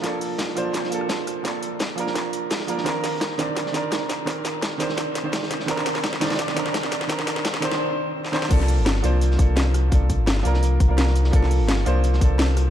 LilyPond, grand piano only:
\new Staff \with { instrumentName = "Grand piano" } { \time 4/4 \key bes \major \tempo 4 = 170 <f bes d' a'>4. <f bes d' c''>4 <f bes d' a'>4. | <f bes d' a'>4. <f bes d' bes'>4~ <f bes d' bes'>16 r8. <f bes d' bes'>8 | <ees c' d' bes'>4. <ees c' d' d''>4 <ees c' d' bes'>4. | <ees c' d' bes'>4. <ees c' d' c''>4~ <ees c' d' c''>16 <ees c' d' c''>16 r4 |
<ees c' d' bes'>4. <ees c' d' d''>4 <ees c' d' bes'>4. | <ees c' d' bes'>4. <ees c' d' c''>4~ <ees c' d' c''>16 r8. <ees c' d' c''>8 | <f bes d' a'>4. <f bes d' c''>4 <f bes d' a'>4. | <f bes d' a'>4. <f bes d' bes'>4~ <f bes d' bes'>16 <f bes d' bes'>16 r4 |
<f bes d' a'>4. <f bes d' c''>4 <f bes d' a'>4. | }